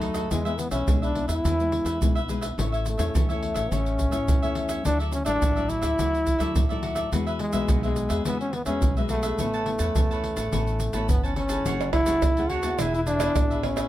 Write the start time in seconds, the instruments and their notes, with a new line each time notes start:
Already playing: upright bass D#2, nylon-string guitar F#2 F#3 A3 D#4, trombone A3
0.01 cavaquinho D#4 A4 B4 D#5, pandeiro
0.14 cavaquinho A4 B4 D#5, pandeiro, shaker
0.31 upright bass E2, nylon-string guitar E3 G#3 B3 E4, trombone G#3, cavaquinho G#4 B4 E5, pandeiro, shaker, surdo
0.45 nylon-string guitar G#3 B3 E4, cavaquinho B4 E5, pandeiro, shaker
0.58 trombone B3, muted cavaquinho stroke, pandeiro, shaker
0.71 upright bass B1, trombone C#4, cavaquinho B4 E5, pandeiro, shaker
0.87 upright bass B1, nylon-string guitar B2 G#3 B3 E4, cavaquinho G#4 B4 E5, pandeiro, shaker, surdo
1.02 trombone D4, cavaquinho B4 E5, pandeiro, shaker
1.15 nylon-string guitar G#3 B3 E4, pandeiro
1.28 upright bass E2, trombone E4, cavaquinho B4 E5, pandeiro, shaker
1.44 upright bass E2, nylon-string guitar E3, cavaquinho G#4 B4 E5, pandeiro, shaker, surdo
1.60 nylon-string guitar G#3 B3 E4, pandeiro, shaker
1.72 muted cavaquinho stroke, pandeiro
1.85 upright bass E2, cavaquinho B4 E5, pandeiro, shaker
2.01 upright bass B1, nylon-string guitar B2 G#3 B3 E4, pandeiro, shaker, surdo
2.15 cavaquinho B4 E5, pandeiro, shaker
2.28 nylon-string guitar G#3 B3 E4, cavaquinho G#4 B4 E5, pandeiro, shaker
2.41 cavaquinho B4 E5, pandeiro, shaker
2.58 upright bass A1, nylon-string guitar A2 A3 C#4 E4, cavaquinho A4 C#5 E5, pandeiro, shaker, surdo
2.72 cavaquinho C#5 E5, pandeiro, shaker
2.85 trombone A3, muted cavaquinho stroke, pandeiro, shaker
2.98 upright bass E2, nylon-string guitar A3 C#4 E4, cavaquinho C#5 E5, pandeiro, shaker
3.14 upright bass E2, nylon-string guitar E3, cavaquinho A4 C#5 E5, pandeiro, shaker, surdo
3.29 nylon-string guitar A3 C#4 E4, trombone A3, cavaquinho C#5 E5, pandeiro, shaker
3.42 pandeiro
3.54 upright bass A1, cavaquinho C#5 E5, pandeiro, shaker
3.71 upright bass A1, nylon-string guitar A2 A3 C#4 E4, trombone C#4, cavaquinho A4 C#5 E5, pandeiro, shaker, surdo
3.86 pandeiro, shaker
3.99 muted cavaquinho stroke, pandeiro, shaker, surdo
4.11 upright bass A1, nylon-string guitar A3 C#4 E4, cavaquinho C#5 E5, pandeiro, shaker
4.28 upright bass E2, nylon-string guitar E3, pandeiro, shaker, surdo
4.42 nylon-string guitar A3 C#4 E4, cavaquinho C#5 E5, pandeiro, shaker
4.55 cavaquinho A4 C#5 E5, pandeiro
4.68 cavaquinho C#5 E5, pandeiro, shaker
4.85 upright bass D2, nylon-string guitar D3 F#3 A3 E4, trombone D4, cavaquinho F#4 A4 D5 E5, pandeiro, shaker, surdo
4.99 cavaquinho A4 D5 E5, pandeiro, shaker
5.12 trombone C#4, muted cavaquinho stroke, pandeiro, shaker
5.25 upright bass A1, nylon-string guitar F#3 A3 E4, trombone D4, cavaquinho A4 D5 E5, pandeiro, shaker
5.41 upright bass A1, nylon-string guitar A2, cavaquinho F#4 A4 D5 E5, pandeiro, shaker, surdo
5.56 nylon-string guitar F#3 A3 E4, cavaquinho A4 D5 E5, pandeiro, shaker
5.69 trombone E4, pandeiro, shaker
5.81 upright bass D2, cavaquinho A4 D5 E5, pandeiro, shaker
5.97 upright bass D2, nylon-string guitar D3 F#3 A3 E4, cavaquinho F#4 A4 D5 E5, pandeiro, shaker, surdo
6.14 pandeiro, shaker
6.25 muted cavaquinho stroke, pandeiro, shaker, surdo
6.38 upright bass D2, nylon-string guitar F#3 A3 E4, cavaquinho A4 D5 E5, pandeiro, shaker
6.56 upright bass D#2, nylon-string guitar A2, pandeiro, shaker, surdo
6.69 nylon-string guitar F#3 A3 E4, cavaquinho A4 D5 E5, pandeiro, shaker
6.82 cavaquinho F#4 A4 D5 E5, pandeiro
6.95 cavaquinho A4 D5 E5, pandeiro, shaker
7.12 upright bass E2, nylon-string guitar E3 G#3 B3 F#4, cavaquinho F#4 G#4 B4 E5, pandeiro, shaker, surdo
7.27 cavaquinho G#4 B4 E5, pandeiro, shaker
7.39 trombone G#3, muted cavaquinho stroke, pandeiro
7.53 upright bass B1, nylon-string guitar G#3 B3 F#4, cavaquinho G#4 B4 E5, pandeiro, shaker
7.68 upright bass B1, nylon-string guitar B2, cavaquinho F#4 G#4 B4 E5, pandeiro, shaker, surdo
7.83 nylon-string guitar G#3 B3 F#4, trombone G#3, cavaquinho G#4 B4 E5, pandeiro, shaker
7.96 pandeiro, shaker
8.09 upright bass E2, cavaquinho G#4 B4 E5, pandeiro, shaker
8.25 upright bass E2, nylon-string guitar E3 G#3 B3 F#4, trombone B3, cavaquinho F#4 G#4 B4 E5, pandeiro, shaker, surdo
8.41 trombone C#4, pandeiro, shaker
8.53 trombone B3, muted cavaquinho stroke, pandeiro
8.66 upright bass E2, nylon-string guitar G#3 B3 F#4, trombone C#4, cavaquinho G#4 B4 E5, pandeiro, shaker
8.82 upright bass B1, nylon-string guitar B2, pandeiro, shaker, surdo
8.97 nylon-string guitar G#3 B3 F#4, cavaquinho G#4 B4 E5, pandeiro, shaker
9.09 trombone A3, cavaquinho F#4 G#4 B4 E5, pandeiro, shaker
9.23 cavaquinho G#4 B4 E5, pandeiro, shaker
9.39 upright bass A1, nylon-string guitar A2 E3 B3 C#4, cavaquinho A4 B4 C#5 A5, pandeiro, shaker, surdo
9.54 cavaquinho B4 C#5 A5, pandeiro, shaker
9.66 nylon-string guitar E3 B3 C#4, muted cavaquinho stroke, pandeiro
9.79 upright bass E2, cavaquinho B4 C#5 A5, pandeiro, shaker
9.95 upright bass E2, nylon-string guitar E3 B3 C#4, cavaquinho A4 B4 C#5 A5, pandeiro, shaker, surdo
10.11 cavaquinho B4 C#5 A5, pandeiro, shaker
10.24 pandeiro
10.36 upright bass A1, cavaquinho B4 C#5 A5, pandeiro, shaker
10.52 upright bass A1, nylon-string guitar A2 E3 B3 C#4, cavaquinho A4 B4 C#5 A5, pandeiro, shaker, surdo
10.67 pandeiro, shaker
10.80 muted cavaquinho stroke, pandeiro, shaker
10.93 upright bass A1, nylon-string guitar E3 B3 C#4, cavaquinho B4 C#5 A5, pandeiro, shaker
11.09 upright bass G1, nylon-string guitar E3, trombone B3, pandeiro, shaker, surdo
11.23 trombone C#4, cavaquinho B4 C#5 A5, pandeiro, shaker
11.36 trombone C#4, cavaquinho A4 B4 C#5 A5, pandeiro
11.49 nylon-string guitar A3 C#4 G#4, cavaquinho B4 C#5 A5, pandeiro, shaker
11.66 upright bass F#1, nylon-string guitar F#3, cavaquinho G#4 C#5 F#5 A5, pandeiro, shaker, surdo
11.81 pandeiro, tamborim, shaker
11.93 trombone E4, cavaquinho G#4 C#5 F#5 A5, pandeiro, tamborim, surdo
12.06 nylon-string guitar A3 C#4 G#4, cavaquinho G#4 C#5 F#5 A5, pandeiro, shaker
12.22 upright bass D#2, nylon-string guitar C#3, pandeiro, tamborim, shaker, surdo
12.37 nylon-string guitar A3 C#4 G#4, cavaquinho C#5 F#5 A5, pandeiro, shaker
12.50 trombone F#4, cavaquinho G#4 C#5 F#5 A5, pandeiro
12.63 nylon-string guitar B3 E4 G#4, cavaquinho C#5 F#5 A5, pandeiro, shaker
12.79 upright bass E1, nylon-string guitar E3, cavaquinho E4 G#4 B4 E5, trombone E4, pandeiro, tamborim, shaker, surdo
12.94 trombone E4, pandeiro, shaker
13.07 trombone D4, cavaquinho E4 G#4 B4 E5, pandeiro, shaker
13.20 nylon-string guitar B3 E4 G#4, cavaquinho E4 G#4 B4 E5, pandeiro, tamborim, shaker
13.36 upright bass A1, nylon-string guitar B2, pandeiro, tamborim, shaker, surdo
13.50 cavaquinho G#4 B4 E5, pandeiro, shaker
13.63 nylon-string guitar B3 E4 G#4, trombone C#4, pandeiro, tamborim
13.76 cavaquinho G#4 B4 E5, pandeiro, tamborim, shaker